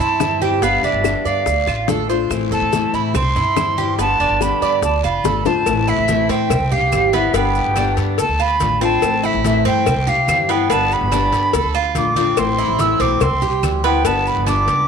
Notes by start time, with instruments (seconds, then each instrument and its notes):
0.00 upright bass G2, cuban tres E4, flute A5, maracas
0.19 steel-string acoustic guitar E3 G3 C4 E4, high bongo, low bongo, high conga, short guiro, claves, maracas
0.40 steel-string acoustic guitar E3 G3 C4 E4, cuban tres G4, flute G5, high conga, short guiro, maracas
0.61 upright bass G1, steel-string acoustic guitar D3 G3 B3 G4, cuban tres B3, flute F5, high bongo, long guiro, maracas
0.83 upright bass E1, cuban tres D4, flute E5, high bongo, high conga, maracas
0.93 upright bass G1
1.03 steel-string acoustic guitar D3 G3 B3 G4, high bongo, high conga, short guiro, claves, maracas
1.25 upright bass G2, cuban tres D5, flute F5, high bongo, high conga, short guiro, maracas
1.46 upright bass D2, muted steel-string acoustic guitar stroke, high bongo, high conga, long guiro, maracas
1.67 upright bass A1, cuban tres F4, high bongo, high conga, claves, maracas
1.88 steel-string acoustic guitar D3 A3 D4 F4, cuban tres A4, high bongo, low bongo, high conga, short guiro, maracas
2.09 steel-string acoustic guitar A3 D4 F4, cuban tres C5, short guiro, maracas
2.30 upright bass A1, steel-string acoustic guitar E3 A3 C4 E4, high bongo, high conga, long guiro, claves, maracas
2.51 upright bass G1, cuban tres A4, flute A5, high conga, maracas
2.61 upright bass A1
2.72 steel-string acoustic guitar E3 A3 C4 E4, high bongo, high conga, short guiro, maracas
2.93 upright bass A2, cuban tres E4, flute B5, short guiro, maracas
3.14 upright bass C2, cuban tres C4, flute C6, muted steel-string acoustic guitar stroke, high bongo, high conga, low conga, long guiro, claves, maracas
3.36 upright bass G2, cuban tres E4, high conga, low conga, maracas
3.56 steel-string acoustic guitar E3 G3 C4 E4, high bongo, low bongo, high conga, short guiro, claves, maracas
3.77 steel-string acoustic guitar E3 G3 C4 E4, cuban tres G4, high conga, short guiro, maracas
3.98 upright bass G1, steel-string acoustic guitar D3 G3 B3 G4, cuban tres B3, flute A5, high bongo, high conga, long guiro, maracas
4.20 upright bass E1, cuban tres D4, high bongo, high conga, maracas
4.30 upright bass G1
4.41 steel-string acoustic guitar D3 G3 B3 G4, flute B5, high bongo, high conga, short guiro, claves, maracas
4.61 upright bass G2, cuban tres D5, high bongo, high conga, short guiro, maracas
4.82 upright bass D2, flute A5, muted steel-string acoustic guitar stroke, high bongo, high conga, long guiro, maracas
5.03 upright bass F1, cuban tres F4, flute B5, high bongo, high conga, claves, maracas
5.24 upright bass G1, steel-string acoustic guitar D3 A3 D4 F4, cuban tres A4, high bongo, high conga, short guiro, maracas
5.45 upright bass A1, steel-string acoustic guitar A3 D4 F4, cuban tres C5, flute A5, low bongo, high conga, short guiro, maracas
5.66 upright bass A1, steel-string acoustic guitar E3 A3 C4 E4, cowbell, long guiro, claves, maracas
5.88 cuban tres E4, flute E5, high conga, maracas
5.98 upright bass A1
6.08 steel-string acoustic guitar E3 A3 C4 E4, cowbell, high conga, short guiro, maracas
6.29 upright bass A2, cuban tres C4, flute G5, cowbell, short guiro, maracas
6.50 upright bass C2, muted steel-string acoustic guitar stroke, cowbell, high conga, low conga, long guiro, claves, maracas
6.60 upright bass C2
6.72 cuban tres G4, flute F5, high conga, low conga, maracas
6.92 upright bass G#1, steel-string acoustic guitar E3 G3 C4 E4, cowbell, high conga, short guiro, claves, maracas
7.13 steel-string acoustic guitar E3 G3 C4 E4, cuban tres B3, flute E5, cowbell, high conga, short guiro, maracas
7.34 upright bass G1, steel-string acoustic guitar D3 G3 B3 G4, cuban tres B3, flute G5, cowbell, long guiro, maracas
7.55 high conga, maracas
7.65 upright bass G1
7.76 steel-string acoustic guitar D3 G3 B3 G4, cuban tres D4, cowbell, high conga, short guiro, claves, maracas
7.97 upright bass G2, cowbell, high conga, short guiro, maracas
8.18 upright bass D2, cuban tres A4, flute A5, muted steel-string acoustic guitar stroke, cowbell, high conga, long guiro, maracas
8.29 upright bass D2
8.40 cuban tres F4, flute B5, high conga, claves, maracas
8.59 upright bass A1, steel-string acoustic guitar D3 A3 D4 F4, cowbell, high conga, short guiro, maracas
8.81 steel-string acoustic guitar A3 D4 F4, cuban tres C4, flute A5, cowbell, short guiro, maracas
9.02 upright bass A1, steel-string acoustic guitar E3 A3 C4 E4, cowbell, high conga, long guiro, claves, maracas
9.23 cuban tres E4, flute E5, high conga, maracas
9.34 upright bass A1
9.44 steel-string acoustic guitar E3 A3 C4 E4, cowbell, high conga, short guiro, maracas
9.65 upright bass G2, cuban tres C4, flute G5, cowbell, short guiro, maracas
9.86 upright bass C2, muted steel-string acoustic guitar stroke, cowbell, high conga, low conga, long guiro, claves, maracas
9.96 upright bass C2
10.07 cuban tres G4, flute F5, high conga, low conga, maracas
10.28 upright bass G2, steel-string acoustic guitar E3 G3 C4 E4, cowbell, high conga, short guiro, claves, maracas
10.49 steel-string acoustic guitar E3 G3 C4 E4, cuban tres B3, flute G5, cowbell, short guiro, maracas
10.70 upright bass G1, steel-string acoustic guitar D3 G3 B3 G4, cuban tres B3, flute A5, cowbell, high conga, long guiro, maracas
10.90 flute B5, high conga, maracas
11.01 upright bass G1
11.11 steel-string acoustic guitar D3 G3 B3 G4, cuban tres D4, cowbell, high conga, short guiro, claves, maracas
11.32 upright bass G2, cowbell, high conga, short guiro, maracas
11.53 upright bass D2, cuban tres A4, muted steel-string acoustic guitar stroke, cowbell, high conga, long guiro, maracas
11.64 upright bass D2
11.74 cuban tres F4, high conga, claves, maracas
11.95 upright bass A#1, steel-string acoustic guitar D3 A3 D4 F4, flute D6, cowbell, high conga, short guiro, maracas
12.16 steel-string acoustic guitar A3 D4 F4, cuban tres C4, cowbell, high conga, short guiro, maracas
12.37 upright bass A1, steel-string acoustic guitar E3 A3 C4 E4, flute C6, cowbell, high conga, long guiro, claves, maracas
12.58 cuban tres E4, high conga, maracas
12.68 upright bass A1
12.79 steel-string acoustic guitar E3 A3 C4 E4, flute E6, cowbell, high conga, short guiro, maracas
13.00 upright bass B1, cuban tres C4, flute D6, cowbell, short guiro, maracas
13.21 upright bass C2, flute C6, muted steel-string acoustic guitar stroke, cowbell, high conga, low conga, long guiro, claves, maracas
13.31 upright bass C2
13.42 cuban tres G4, high conga, low conga, maracas
13.63 upright bass D2, steel-string acoustic guitar E3 G3 C4 E4, cowbell, high conga, short guiro, claves, maracas
13.84 steel-string acoustic guitar E3 G3 C4 E4, cuban tres B3, flute G5, cowbell, short guiro, maracas
14.04 upright bass G1, steel-string acoustic guitar D3 G3 B3 G4, cuban tres B3, flute A5, cowbell, high conga, long guiro, maracas
14.26 flute B5, high conga, maracas
14.36 upright bass G1
14.46 steel-string acoustic guitar D3 G3 B3 G4, cuban tres D4, flute D6, cowbell, high conga, short guiro, claves, maracas
14.67 upright bass C#2, cowbell, high conga, short guiro, maracas